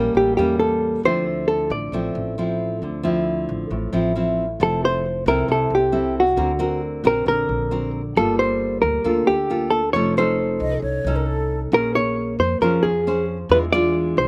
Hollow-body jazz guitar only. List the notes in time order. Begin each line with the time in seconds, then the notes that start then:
Already playing: A#4
0.17 G4
0.37 G4
0.59 A4
1.05 C5
1.48 A4
1.71 D5
4.63 A4
4.85 C5
5.28 A#4
5.52 A4
5.75 G4
6.20 F#4
7.07 A#4
7.28 A#4
8.17 A4
8.39 C5
8.82 A#4
9.27 G4
9.70 A4
9.93 C#5
10.18 C5
11.74 A#4
11.95 C#5
12.40 C5
12.62 A#4
12.83 G#4
13.52 B4
13.73 D5
14.18 C5